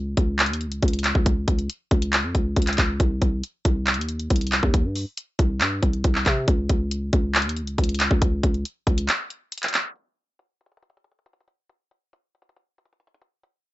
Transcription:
Already playing: 808-style bass C#2
0.17 808-style bass C#2, kick, closed hi-hat
0.39 clap, closed hi-hat
0.46 808-style bass D#2, closed hi-hat
0.53 closed hi-hat
0.61 closed hi-hat
0.66 808-style bass C#2
0.72 closed hi-hat
0.82 808-style bass C#2, kick, closed hi-hat
0.88 closed hi-hat
0.93 closed hi-hat
0.99 closed hi-hat
1.04 clap, closed hi-hat
1.15 808-style bass C#2, kick
1.26 kick, closed hi-hat
1.48 808-style bass C#2, kick, closed hi-hat, open hi-hat
1.59 closed hi-hat
1.70 closed hi-hat
1.91 808-style bass C#2, kick, closed hi-hat
2.02 closed hi-hat
2.13 clap, closed hi-hat
2.24 808-style bass F2
2.35 808-style bass C#2, kick, closed hi-hat
2.56 808-style bass C#2, kick, closed hi-hat
2.62 closed hi-hat
2.67 clap, closed hi-hat
2.73 closed hi-hat
2.78 808-style bass C#2, kick, clap, closed hi-hat
3.00 808-style bass C2, kick, closed hi-hat
3.22 808-style bass C2, kick, closed hi-hat
3.44 closed hi-hat
3.65 808-style bass C2, kick, closed hi-hat
3.87 clap, closed hi-hat
3.94 808-style bass D#2, closed hi-hat
4.01 closed hi-hat
4.09 closed hi-hat
4.20 closed hi-hat
4.30 808-style bass C2, kick, closed hi-hat
4.36 closed hi-hat
4.41 closed hi-hat
4.47 closed hi-hat
4.52 clap, closed hi-hat
4.63 808-style bass D#2, kick
4.74 kick, closed hi-hat
4.85 808-style bass G2
4.96 open hi-hat
5.17 closed hi-hat
5.39 808-style bass C2, kick, closed hi-hat
5.61 808-style bass G2, clap, closed hi-hat
5.83 808-style bass C2, kick, closed hi-hat
5.93 closed hi-hat
6.04 808-style bass C2, kick, closed hi-hat
6.15 clap
6.26 808-style bass C3, kick, clap, closed hi-hat
6.48 808-style bass C#2, kick, closed hi-hat
6.69 808-style bass C#2, kick, closed hi-hat
6.91 closed hi-hat
7.13 808-style bass C#2, kick, closed hi-hat
7.35 clap, closed hi-hat
7.42 808-style bass D#2, closed hi-hat
7.49 closed hi-hat
7.57 closed hi-hat
7.62 808-style bass C#2
7.67 closed hi-hat
7.78 808-style bass C#2, kick, closed hi-hat
7.84 closed hi-hat
7.89 closed hi-hat
7.95 closed hi-hat
8.00 clap, closed hi-hat
8.11 808-style bass C#2, kick
8.22 808-style bass C#2, kick, closed hi-hat
8.43 808-style bass C#2, kick, closed hi-hat, open hi-hat
8.54 closed hi-hat
8.65 closed hi-hat
8.87 808-style bass C#2, kick, closed hi-hat
8.98 closed hi-hat
9.09 clap, closed hi-hat
9.30 closed hi-hat
9.52 closed hi-hat
9.58 closed hi-hat
9.63 clap, closed hi-hat
9.68 closed hi-hat
9.74 clap, closed hi-hat
9.96 closed hi-hat
10.39 closed hi-hat
10.61 closed hi-hat
10.66 closed hi-hat
10.72 closed hi-hat
10.77 closed hi-hat
10.83 closed hi-hat
10.90 closed hi-hat
10.97 closed hi-hat
11.04 closed hi-hat
11.12 closed hi-hat
11.19 closed hi-hat
11.26 closed hi-hat
11.33 closed hi-hat
11.41 closed hi-hat
11.48 closed hi-hat
11.69 closed hi-hat
11.91 closed hi-hat
12.13 closed hi-hat
12.35 closed hi-hat
12.42 closed hi-hat
12.49 closed hi-hat
12.56 closed hi-hat
12.78 closed hi-hat
12.85 closed hi-hat
12.93 closed hi-hat
13.00 closed hi-hat
13.07 closed hi-hat
13.14 closed hi-hat
13.22 closed hi-hat
13.43 closed hi-hat

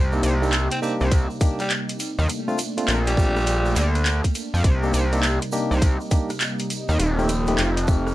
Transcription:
Already playing: analog synth bass C2, analog synth pad C3 G3 A#3 D#4
0.12 tine electric piano A#3 D4 D#4 G4, shaker
0.23 analog synth bass C2, closed hi-hat, shaker
0.42 tine electric piano A#3 D4 D#4 G4, shaker
0.53 clap, closed hi-hat, shaker
0.71 tenor saxophone C4, closed hi-hat, shaker
0.82 tine electric piano A#3 D4 D#4 G4, tenor saxophone C4, shaker
1.01 analog synth bass C2, shaker
1.12 kick, closed hi-hat, shaker
1.30 shaker
1.41 tine electric piano A#3 D4 D#4 G4, kick, closed hi-hat, shaker
1.59 tenor saxophone G3, cross-stick, closed hi-hat, shaker
1.70 clap, closed hi-hat, shaker
1.89 closed hi-hat, shaker
2.00 closed hi-hat, shaker
2.19 analog synth bass D#2, shaker
2.29 analog synth pad A3 D4, closed hi-hat, shaker
2.48 tine electric piano A3 C4 D4 F4, shaker
2.58 closed hi-hat, shaker
2.77 tine electric piano A3 C4 D4 F4, closed hi-hat, shaker
2.88 analog synth bass A#1, clap, closed hi-hat, shaker
3.07 tenor saxophone G3, closed hi-hat, shaker
3.17 tine electric piano A3 C4 D4 F4, kick, shaker
3.36 cross-stick, shaker
3.47 closed hi-hat, shaker
3.65 cross-stick, shaker
3.76 analog synth bass D2, clap, closed hi-hat, shaker
3.95 cross-stick, closed hi-hat, shaker
4.06 clap, closed hi-hat, shaker
4.24 kick, closed hi-hat, shaker
4.35 closed hi-hat, shaker
4.54 analog synth bass F2, shaker
4.64 analog synth bass C2, analog synth pad C3 G3 D#4, kick, closed hi-hat, shaker
4.83 tine electric piano A#3 D4 D#4 G4, shaker
4.94 analog synth bass C2, closed hi-hat, shaker
5.13 tine electric piano A#3 D4 D#4 G4, closed hi-hat, shaker
5.23 clap, closed hi-hat, shaker
5.42 closed hi-hat, shaker
5.52 tine electric piano A#3 D4 D#4 G4, shaker
5.71 analog synth bass C2, shaker
5.82 kick, closed hi-hat, shaker
6.00 shaker
6.11 tine electric piano A#3 D4 D#4 G4, kick, closed hi-hat, shaker
6.30 cross-stick, closed hi-hat, shaker
6.40 clap, closed hi-hat, shaker
6.59 closed hi-hat, shaker
6.70 closed hi-hat, shaker
6.89 analog synth bass D#2, shaker
6.99 analog synth bass D#1, analog synth pad F3 C4 A4, closed hi-hat, shaker
7.19 tine electric piano A3 C4 D#4 G4, shaker
7.29 closed hi-hat, shaker
7.47 tine electric piano A3 C4 D#4 G4, closed hi-hat, shaker
7.58 analog synth bass F1, clap, closed hi-hat, shaker
7.77 closed hi-hat, shaker
7.88 tine electric piano A3 C4 D#4 G4, kick, shaker
8.07 cross-stick, shaker

